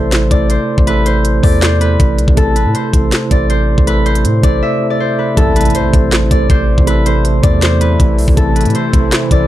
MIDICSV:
0, 0, Header, 1, 7, 480
1, 0, Start_track
1, 0, Key_signature, 0, "minor"
1, 0, Tempo, 375000
1, 1116, Time_signature, 4, 2, 24, 8
1, 12124, End_track
2, 0, Start_track
2, 0, Title_t, "Harp"
2, 0, Program_c, 0, 46
2, 0, Note_on_c, 0, 69, 83
2, 0, Note_on_c, 0, 72, 85
2, 0, Note_on_c, 0, 74, 79
2, 0, Note_on_c, 0, 76, 85
2, 393, Note_off_c, 0, 74, 0
2, 398, Note_on_c, 0, 74, 78
2, 446, Note_off_c, 0, 76, 0
2, 638, Note_off_c, 0, 72, 0
2, 643, Note_on_c, 0, 72, 80
2, 1114, Note_on_c, 0, 71, 109
2, 1191, Note_off_c, 0, 72, 0
2, 1357, Note_on_c, 0, 72, 89
2, 1433, Note_off_c, 0, 71, 0
2, 1824, Note_off_c, 0, 74, 0
2, 1829, Note_on_c, 0, 74, 77
2, 2003, Note_off_c, 0, 69, 0
2, 2066, Note_off_c, 0, 72, 0
2, 2071, Note_on_c, 0, 72, 88
2, 2316, Note_on_c, 0, 71, 79
2, 2392, Note_off_c, 0, 72, 0
2, 3031, Note_on_c, 0, 69, 84
2, 3268, Note_off_c, 0, 71, 0
2, 3273, Note_on_c, 0, 71, 78
2, 3520, Note_on_c, 0, 72, 81
2, 3597, Note_off_c, 0, 71, 0
2, 4193, Note_off_c, 0, 74, 0
2, 4245, Note_on_c, 0, 74, 83
2, 4472, Note_off_c, 0, 72, 0
2, 4477, Note_on_c, 0, 72, 83
2, 4956, Note_on_c, 0, 71, 111
2, 5033, Note_off_c, 0, 72, 0
2, 5194, Note_on_c, 0, 72, 85
2, 5271, Note_off_c, 0, 71, 0
2, 5669, Note_off_c, 0, 74, 0
2, 5674, Note_on_c, 0, 74, 78
2, 5842, Note_off_c, 0, 69, 0
2, 5921, Note_on_c, 0, 76, 84
2, 6270, Note_off_c, 0, 74, 0
2, 6275, Note_on_c, 0, 74, 77
2, 6399, Note_off_c, 0, 72, 0
2, 6404, Note_on_c, 0, 72, 82
2, 6639, Note_on_c, 0, 71, 75
2, 6716, Note_off_c, 0, 72, 0
2, 6873, Note_on_c, 0, 69, 85
2, 7110, Note_off_c, 0, 71, 0
2, 7115, Note_on_c, 0, 71, 86
2, 7361, Note_on_c, 0, 72, 89
2, 7437, Note_off_c, 0, 71, 0
2, 8073, Note_off_c, 0, 74, 0
2, 8078, Note_on_c, 0, 74, 79
2, 8126, Note_off_c, 0, 76, 0
2, 8319, Note_off_c, 0, 72, 0
2, 8324, Note_on_c, 0, 72, 84
2, 8795, Note_on_c, 0, 71, 106
2, 8871, Note_off_c, 0, 72, 0
2, 9037, Note_on_c, 0, 72, 91
2, 9114, Note_off_c, 0, 71, 0
2, 9504, Note_off_c, 0, 74, 0
2, 9509, Note_on_c, 0, 74, 80
2, 9684, Note_off_c, 0, 69, 0
2, 9747, Note_off_c, 0, 72, 0
2, 9752, Note_on_c, 0, 72, 90
2, 9996, Note_on_c, 0, 71, 81
2, 10073, Note_off_c, 0, 72, 0
2, 10711, Note_on_c, 0, 69, 88
2, 10948, Note_off_c, 0, 71, 0
2, 10953, Note_on_c, 0, 71, 78
2, 11202, Note_on_c, 0, 72, 87
2, 11279, Note_off_c, 0, 71, 0
2, 11873, Note_off_c, 0, 74, 0
2, 11925, Note_on_c, 0, 74, 86
2, 12124, Note_off_c, 0, 69, 0
2, 12124, Note_off_c, 0, 72, 0
2, 12124, Note_off_c, 0, 74, 0
2, 12124, End_track
3, 0, Start_track
3, 0, Title_t, "Tine electric piano"
3, 0, Program_c, 1, 4
3, 0, Control_c, 1, 64, 127
3, 0, Note_on_c, 1, 48, 73
3, 0, Note_on_c, 1, 57, 75
3, 0, Note_on_c, 1, 64, 70
3, 0, Note_on_c, 1, 69, 78
3, 210, Note_off_c, 1, 48, 0
3, 222, Note_off_c, 1, 57, 0
3, 235, Note_off_c, 1, 64, 0
3, 247, Note_off_c, 1, 69, 0
3, 358, Note_on_c, 1, 48, 74
3, 383, Note_on_c, 1, 57, 73
3, 408, Note_on_c, 1, 64, 73
3, 433, Note_on_c, 1, 69, 85
3, 847, Note_off_c, 1, 48, 0
3, 860, Note_off_c, 1, 57, 0
3, 872, Note_off_c, 1, 64, 0
3, 884, Note_off_c, 1, 69, 0
3, 1077, Note_on_c, 1, 48, 103
3, 1102, Note_on_c, 1, 57, 103
3, 1127, Note_on_c, 1, 64, 93
3, 1152, Note_on_c, 1, 69, 115
3, 1567, Note_off_c, 1, 48, 0
3, 1579, Note_off_c, 1, 57, 0
3, 1592, Note_off_c, 1, 64, 0
3, 1604, Note_off_c, 1, 69, 0
3, 1797, Note_on_c, 1, 48, 73
3, 1822, Note_on_c, 1, 57, 68
3, 1847, Note_on_c, 1, 64, 73
3, 1872, Note_on_c, 1, 69, 82
3, 2130, Note_off_c, 1, 48, 0
3, 2143, Note_off_c, 1, 57, 0
3, 2155, Note_off_c, 1, 64, 0
3, 2168, Note_off_c, 1, 69, 0
3, 2279, Note_on_c, 1, 48, 77
3, 2303, Note_on_c, 1, 57, 70
3, 2328, Note_on_c, 1, 64, 73
3, 2353, Note_on_c, 1, 69, 80
3, 2767, Note_off_c, 1, 48, 0
3, 2780, Note_off_c, 1, 57, 0
3, 2792, Note_off_c, 1, 64, 0
3, 2805, Note_off_c, 1, 69, 0
3, 3002, Note_on_c, 1, 48, 110
3, 3027, Note_on_c, 1, 57, 97
3, 3051, Control_c, 1, 64, 0
3, 3052, Note_on_c, 1, 64, 93
3, 3077, Note_on_c, 1, 69, 105
3, 3255, Note_off_c, 1, 48, 0
3, 3267, Note_off_c, 1, 57, 0
3, 3279, Note_off_c, 1, 64, 0
3, 3292, Note_off_c, 1, 69, 0
3, 3308, Control_c, 1, 64, 127
3, 3360, Note_on_c, 1, 48, 69
3, 3385, Note_on_c, 1, 57, 64
3, 3410, Note_on_c, 1, 64, 65
3, 3435, Note_on_c, 1, 69, 80
3, 3613, Note_off_c, 1, 48, 0
3, 3626, Note_off_c, 1, 57, 0
3, 3638, Note_off_c, 1, 64, 0
3, 3651, Note_off_c, 1, 69, 0
3, 3721, Note_on_c, 1, 48, 77
3, 3746, Note_on_c, 1, 57, 65
3, 3771, Note_on_c, 1, 64, 67
3, 3796, Note_on_c, 1, 69, 80
3, 4052, Note_off_c, 1, 48, 0
3, 4065, Note_off_c, 1, 57, 0
3, 4077, Note_off_c, 1, 64, 0
3, 4089, Note_off_c, 1, 69, 0
3, 4201, Note_on_c, 1, 48, 76
3, 4226, Note_on_c, 1, 57, 64
3, 4251, Note_on_c, 1, 64, 70
3, 4275, Note_on_c, 1, 69, 87
3, 4689, Note_off_c, 1, 48, 0
3, 4701, Note_off_c, 1, 57, 0
3, 4714, Note_off_c, 1, 64, 0
3, 4726, Note_off_c, 1, 69, 0
3, 4915, Note_on_c, 1, 48, 101
3, 4940, Note_on_c, 1, 57, 90
3, 4965, Note_on_c, 1, 64, 90
3, 4990, Note_on_c, 1, 69, 109
3, 5406, Note_off_c, 1, 48, 0
3, 5418, Note_off_c, 1, 57, 0
3, 5431, Note_off_c, 1, 64, 0
3, 5443, Note_off_c, 1, 69, 0
3, 5638, Note_on_c, 1, 48, 75
3, 5663, Note_on_c, 1, 57, 70
3, 5688, Note_on_c, 1, 64, 70
3, 5713, Note_on_c, 1, 69, 88
3, 5971, Note_off_c, 1, 48, 0
3, 5983, Note_off_c, 1, 57, 0
3, 5996, Note_off_c, 1, 64, 0
3, 6008, Note_off_c, 1, 69, 0
3, 6116, Note_on_c, 1, 48, 81
3, 6141, Note_on_c, 1, 57, 72
3, 6166, Note_on_c, 1, 64, 74
3, 6191, Note_on_c, 1, 69, 84
3, 6606, Note_off_c, 1, 48, 0
3, 6619, Note_off_c, 1, 57, 0
3, 6631, Note_off_c, 1, 64, 0
3, 6644, Note_off_c, 1, 69, 0
3, 6839, Note_on_c, 1, 48, 97
3, 6864, Note_on_c, 1, 57, 92
3, 6889, Note_on_c, 1, 64, 99
3, 6890, Control_c, 1, 64, 0
3, 6914, Note_on_c, 1, 69, 120
3, 7093, Note_off_c, 1, 48, 0
3, 7102, Control_c, 1, 64, 127
3, 7105, Note_off_c, 1, 57, 0
3, 7118, Note_off_c, 1, 64, 0
3, 7130, Note_off_c, 1, 69, 0
3, 7195, Note_on_c, 1, 48, 69
3, 7220, Note_on_c, 1, 57, 72
3, 7244, Note_on_c, 1, 64, 69
3, 7269, Note_on_c, 1, 69, 74
3, 7451, Note_off_c, 1, 48, 0
3, 7463, Note_off_c, 1, 57, 0
3, 7475, Note_off_c, 1, 64, 0
3, 7488, Note_off_c, 1, 69, 0
3, 7556, Note_on_c, 1, 48, 77
3, 7581, Note_on_c, 1, 57, 73
3, 7606, Note_on_c, 1, 64, 69
3, 7631, Note_on_c, 1, 69, 78
3, 7890, Note_off_c, 1, 48, 0
3, 7902, Note_off_c, 1, 57, 0
3, 7914, Note_off_c, 1, 64, 0
3, 7927, Note_off_c, 1, 69, 0
3, 8037, Note_on_c, 1, 48, 74
3, 8062, Note_on_c, 1, 57, 73
3, 8087, Note_on_c, 1, 64, 76
3, 8112, Note_on_c, 1, 69, 90
3, 8527, Note_off_c, 1, 48, 0
3, 8539, Note_off_c, 1, 57, 0
3, 8552, Note_off_c, 1, 64, 0
3, 8564, Note_off_c, 1, 69, 0
3, 8758, Note_on_c, 1, 48, 104
3, 8782, Note_on_c, 1, 57, 106
3, 8807, Note_on_c, 1, 64, 94
3, 8832, Note_on_c, 1, 69, 123
3, 9247, Note_off_c, 1, 48, 0
3, 9259, Note_off_c, 1, 57, 0
3, 9272, Note_off_c, 1, 64, 0
3, 9284, Note_off_c, 1, 69, 0
3, 9477, Note_on_c, 1, 48, 74
3, 9502, Note_on_c, 1, 57, 69
3, 9527, Note_on_c, 1, 64, 71
3, 9552, Note_on_c, 1, 69, 85
3, 9810, Note_off_c, 1, 48, 0
3, 9823, Note_off_c, 1, 57, 0
3, 9835, Note_off_c, 1, 64, 0
3, 9848, Note_off_c, 1, 69, 0
3, 9959, Note_on_c, 1, 48, 79
3, 9983, Note_on_c, 1, 57, 73
3, 10008, Note_on_c, 1, 64, 72
3, 10033, Note_on_c, 1, 69, 81
3, 10447, Note_off_c, 1, 48, 0
3, 10460, Note_off_c, 1, 57, 0
3, 10472, Note_off_c, 1, 64, 0
3, 10485, Note_off_c, 1, 69, 0
3, 10682, Note_on_c, 1, 48, 108
3, 10707, Note_on_c, 1, 57, 97
3, 10731, Control_c, 1, 64, 0
3, 10732, Note_on_c, 1, 64, 92
3, 10756, Note_on_c, 1, 69, 108
3, 10934, Note_off_c, 1, 48, 0
3, 10947, Note_off_c, 1, 57, 0
3, 10948, Control_c, 1, 64, 127
3, 10959, Note_off_c, 1, 64, 0
3, 10971, Note_off_c, 1, 69, 0
3, 11039, Note_on_c, 1, 48, 69
3, 11064, Note_on_c, 1, 57, 68
3, 11089, Note_on_c, 1, 64, 65
3, 11114, Note_on_c, 1, 69, 80
3, 11293, Note_off_c, 1, 48, 0
3, 11306, Note_off_c, 1, 57, 0
3, 11318, Note_off_c, 1, 64, 0
3, 11330, Note_off_c, 1, 69, 0
3, 11400, Note_on_c, 1, 48, 78
3, 11424, Note_on_c, 1, 57, 64
3, 11449, Note_on_c, 1, 64, 71
3, 11474, Note_on_c, 1, 69, 80
3, 11731, Note_off_c, 1, 48, 0
3, 11744, Note_off_c, 1, 57, 0
3, 11756, Note_off_c, 1, 64, 0
3, 11769, Note_off_c, 1, 69, 0
3, 11880, Note_on_c, 1, 48, 83
3, 11905, Note_on_c, 1, 57, 68
3, 11930, Note_on_c, 1, 64, 73
3, 11955, Note_on_c, 1, 69, 91
3, 12124, Note_off_c, 1, 48, 0
3, 12124, Note_off_c, 1, 57, 0
3, 12124, Note_off_c, 1, 64, 0
3, 12124, Note_off_c, 1, 69, 0
3, 12124, End_track
4, 0, Start_track
4, 0, Title_t, "Analog synth pad"
4, 0, Program_c, 2, 89
4, 6876, Note_on_c, 2, 48, 82
4, 6876, Note_on_c, 2, 52, 78
4, 6876, Note_on_c, 2, 57, 74
4, 6876, Note_on_c, 2, 64, 88
4, 12124, Note_off_c, 2, 48, 0
4, 12124, Note_off_c, 2, 52, 0
4, 12124, Note_off_c, 2, 57, 0
4, 12124, Note_off_c, 2, 64, 0
4, 12124, End_track
5, 0, Start_track
5, 0, Title_t, "808-style bass"
5, 0, Program_c, 3, 38
5, 0, Note_on_c, 3, 33, 102
5, 377, Note_off_c, 3, 33, 0
5, 397, Note_on_c, 3, 33, 108
5, 742, Note_off_c, 3, 33, 0
5, 997, Note_on_c, 3, 33, 101
5, 1803, Note_off_c, 3, 33, 0
5, 1836, Note_on_c, 3, 40, 103
5, 2528, Note_off_c, 3, 40, 0
5, 2557, Note_on_c, 3, 33, 104
5, 2796, Note_on_c, 3, 35, 101
5, 2815, Note_off_c, 3, 33, 0
5, 2910, Note_off_c, 3, 35, 0
5, 2917, Note_on_c, 3, 33, 102
5, 3029, Note_off_c, 3, 33, 0
5, 3037, Note_on_c, 3, 33, 108
5, 3396, Note_on_c, 3, 45, 100
5, 3415, Note_off_c, 3, 33, 0
5, 3510, Note_off_c, 3, 45, 0
5, 3756, Note_on_c, 3, 33, 105
5, 3987, Note_off_c, 3, 33, 0
5, 4237, Note_on_c, 3, 33, 104
5, 4813, Note_off_c, 3, 33, 0
5, 4837, Note_on_c, 3, 33, 103
5, 5436, Note_on_c, 3, 45, 105
5, 5455, Note_off_c, 3, 33, 0
5, 5664, Note_off_c, 3, 45, 0
5, 5676, Note_on_c, 3, 33, 107
5, 5907, Note_off_c, 3, 33, 0
5, 6876, Note_on_c, 3, 33, 111
5, 7337, Note_off_c, 3, 33, 0
5, 7597, Note_on_c, 3, 33, 100
5, 8058, Note_off_c, 3, 33, 0
5, 8077, Note_on_c, 3, 33, 106
5, 8307, Note_off_c, 3, 33, 0
5, 8316, Note_on_c, 3, 33, 107
5, 8662, Note_off_c, 3, 33, 0
5, 8677, Note_on_c, 3, 33, 99
5, 9483, Note_off_c, 3, 33, 0
5, 9516, Note_on_c, 3, 40, 103
5, 10208, Note_off_c, 3, 40, 0
5, 10237, Note_on_c, 3, 33, 108
5, 10476, Note_on_c, 3, 35, 103
5, 10496, Note_off_c, 3, 33, 0
5, 10591, Note_off_c, 3, 35, 0
5, 10596, Note_on_c, 3, 33, 100
5, 10709, Note_off_c, 3, 33, 0
5, 10716, Note_on_c, 3, 33, 112
5, 11077, Note_on_c, 3, 45, 104
5, 11096, Note_off_c, 3, 33, 0
5, 11191, Note_off_c, 3, 45, 0
5, 11436, Note_on_c, 3, 33, 103
5, 11667, Note_off_c, 3, 33, 0
5, 11916, Note_on_c, 3, 33, 107
5, 12124, Note_off_c, 3, 33, 0
5, 12124, End_track
6, 0, Start_track
6, 0, Title_t, "Impact"
6, 0, Program_c, 4, 103
6, 6877, Note_on_c, 4, 60, 84
6, 8797, Note_off_c, 4, 60, 0
6, 12124, End_track
7, 0, Start_track
7, 0, Title_t, "Drums"
7, 157, Note_on_c, 9, 38, 122
7, 157, Note_on_c, 9, 42, 91
7, 172, Note_on_c, 9, 39, 95
7, 285, Note_off_c, 9, 38, 0
7, 285, Note_off_c, 9, 42, 0
7, 300, Note_off_c, 9, 39, 0
7, 397, Note_on_c, 9, 36, 92
7, 397, Note_on_c, 9, 42, 83
7, 525, Note_off_c, 9, 36, 0
7, 525, Note_off_c, 9, 42, 0
7, 636, Note_on_c, 9, 42, 66
7, 764, Note_off_c, 9, 42, 0
7, 997, Note_on_c, 9, 36, 98
7, 1116, Note_on_c, 9, 42, 83
7, 1125, Note_off_c, 9, 36, 0
7, 1244, Note_off_c, 9, 42, 0
7, 1356, Note_on_c, 9, 42, 74
7, 1484, Note_off_c, 9, 42, 0
7, 1596, Note_on_c, 9, 42, 78
7, 1724, Note_off_c, 9, 42, 0
7, 1836, Note_on_c, 9, 36, 92
7, 1836, Note_on_c, 9, 46, 58
7, 1964, Note_off_c, 9, 36, 0
7, 1964, Note_off_c, 9, 46, 0
7, 2077, Note_on_c, 9, 38, 116
7, 2077, Note_on_c, 9, 42, 89
7, 2091, Note_on_c, 9, 39, 98
7, 2205, Note_off_c, 9, 38, 0
7, 2205, Note_off_c, 9, 42, 0
7, 2219, Note_off_c, 9, 39, 0
7, 2317, Note_on_c, 9, 42, 83
7, 2445, Note_off_c, 9, 42, 0
7, 2557, Note_on_c, 9, 36, 114
7, 2557, Note_on_c, 9, 42, 73
7, 2685, Note_off_c, 9, 36, 0
7, 2685, Note_off_c, 9, 42, 0
7, 2797, Note_on_c, 9, 42, 70
7, 2917, Note_on_c, 9, 36, 99
7, 2925, Note_off_c, 9, 42, 0
7, 3036, Note_on_c, 9, 42, 87
7, 3037, Note_off_c, 9, 36, 0
7, 3037, Note_on_c, 9, 36, 107
7, 3164, Note_off_c, 9, 42, 0
7, 3165, Note_off_c, 9, 36, 0
7, 3276, Note_on_c, 9, 42, 76
7, 3404, Note_off_c, 9, 42, 0
7, 3517, Note_on_c, 9, 42, 79
7, 3645, Note_off_c, 9, 42, 0
7, 3756, Note_on_c, 9, 36, 96
7, 3756, Note_on_c, 9, 42, 81
7, 3884, Note_off_c, 9, 36, 0
7, 3884, Note_off_c, 9, 42, 0
7, 3997, Note_on_c, 9, 38, 121
7, 3997, Note_on_c, 9, 42, 88
7, 4012, Note_on_c, 9, 39, 97
7, 4125, Note_off_c, 9, 38, 0
7, 4125, Note_off_c, 9, 42, 0
7, 4140, Note_off_c, 9, 39, 0
7, 4237, Note_on_c, 9, 36, 95
7, 4237, Note_on_c, 9, 42, 79
7, 4365, Note_off_c, 9, 36, 0
7, 4365, Note_off_c, 9, 42, 0
7, 4477, Note_on_c, 9, 42, 68
7, 4605, Note_off_c, 9, 42, 0
7, 4837, Note_on_c, 9, 36, 95
7, 4957, Note_on_c, 9, 42, 84
7, 4965, Note_off_c, 9, 36, 0
7, 5085, Note_off_c, 9, 42, 0
7, 5196, Note_on_c, 9, 42, 47
7, 5317, Note_off_c, 9, 42, 0
7, 5317, Note_on_c, 9, 42, 78
7, 5437, Note_off_c, 9, 42, 0
7, 5437, Note_on_c, 9, 42, 77
7, 5565, Note_off_c, 9, 42, 0
7, 5676, Note_on_c, 9, 36, 96
7, 5677, Note_on_c, 9, 42, 81
7, 5804, Note_off_c, 9, 36, 0
7, 5805, Note_off_c, 9, 42, 0
7, 6877, Note_on_c, 9, 36, 105
7, 6877, Note_on_c, 9, 42, 88
7, 7005, Note_off_c, 9, 36, 0
7, 7005, Note_off_c, 9, 42, 0
7, 7117, Note_on_c, 9, 42, 77
7, 7177, Note_off_c, 9, 42, 0
7, 7177, Note_on_c, 9, 42, 70
7, 7236, Note_off_c, 9, 42, 0
7, 7236, Note_on_c, 9, 42, 56
7, 7297, Note_off_c, 9, 42, 0
7, 7297, Note_on_c, 9, 42, 45
7, 7357, Note_off_c, 9, 42, 0
7, 7357, Note_on_c, 9, 42, 80
7, 7485, Note_off_c, 9, 42, 0
7, 7597, Note_on_c, 9, 36, 94
7, 7597, Note_on_c, 9, 42, 83
7, 7725, Note_off_c, 9, 36, 0
7, 7725, Note_off_c, 9, 42, 0
7, 7837, Note_on_c, 9, 38, 120
7, 7837, Note_on_c, 9, 42, 93
7, 7852, Note_on_c, 9, 39, 97
7, 7965, Note_off_c, 9, 38, 0
7, 7965, Note_off_c, 9, 42, 0
7, 7980, Note_off_c, 9, 39, 0
7, 8077, Note_on_c, 9, 36, 94
7, 8077, Note_on_c, 9, 42, 83
7, 8205, Note_off_c, 9, 36, 0
7, 8205, Note_off_c, 9, 42, 0
7, 8317, Note_on_c, 9, 36, 114
7, 8317, Note_on_c, 9, 42, 68
7, 8445, Note_off_c, 9, 36, 0
7, 8445, Note_off_c, 9, 42, 0
7, 8677, Note_on_c, 9, 36, 96
7, 8797, Note_on_c, 9, 42, 86
7, 8805, Note_off_c, 9, 36, 0
7, 8925, Note_off_c, 9, 42, 0
7, 9037, Note_on_c, 9, 42, 77
7, 9165, Note_off_c, 9, 42, 0
7, 9277, Note_on_c, 9, 42, 81
7, 9405, Note_off_c, 9, 42, 0
7, 9517, Note_on_c, 9, 36, 97
7, 9517, Note_on_c, 9, 42, 82
7, 9645, Note_off_c, 9, 36, 0
7, 9645, Note_off_c, 9, 42, 0
7, 9757, Note_on_c, 9, 38, 121
7, 9757, Note_on_c, 9, 42, 93
7, 9772, Note_on_c, 9, 39, 94
7, 9885, Note_off_c, 9, 38, 0
7, 9885, Note_off_c, 9, 42, 0
7, 9900, Note_off_c, 9, 39, 0
7, 9997, Note_on_c, 9, 42, 84
7, 10125, Note_off_c, 9, 42, 0
7, 10236, Note_on_c, 9, 36, 117
7, 10237, Note_on_c, 9, 42, 74
7, 10364, Note_off_c, 9, 36, 0
7, 10365, Note_off_c, 9, 42, 0
7, 10477, Note_on_c, 9, 46, 79
7, 10597, Note_on_c, 9, 36, 98
7, 10605, Note_off_c, 9, 46, 0
7, 10716, Note_on_c, 9, 42, 88
7, 10717, Note_off_c, 9, 36, 0
7, 10717, Note_on_c, 9, 36, 109
7, 10844, Note_off_c, 9, 42, 0
7, 10845, Note_off_c, 9, 36, 0
7, 10957, Note_on_c, 9, 42, 77
7, 11017, Note_off_c, 9, 42, 0
7, 11017, Note_on_c, 9, 42, 69
7, 11077, Note_off_c, 9, 42, 0
7, 11077, Note_on_c, 9, 42, 56
7, 11137, Note_off_c, 9, 42, 0
7, 11137, Note_on_c, 9, 42, 44
7, 11197, Note_off_c, 9, 42, 0
7, 11197, Note_on_c, 9, 42, 78
7, 11325, Note_off_c, 9, 42, 0
7, 11436, Note_on_c, 9, 36, 94
7, 11436, Note_on_c, 9, 42, 81
7, 11564, Note_off_c, 9, 36, 0
7, 11564, Note_off_c, 9, 42, 0
7, 11676, Note_on_c, 9, 38, 122
7, 11676, Note_on_c, 9, 42, 93
7, 11691, Note_on_c, 9, 39, 96
7, 11804, Note_off_c, 9, 38, 0
7, 11804, Note_off_c, 9, 42, 0
7, 11819, Note_off_c, 9, 39, 0
7, 11916, Note_on_c, 9, 42, 82
7, 11917, Note_on_c, 9, 36, 95
7, 12044, Note_off_c, 9, 42, 0
7, 12045, Note_off_c, 9, 36, 0
7, 12124, End_track
0, 0, End_of_file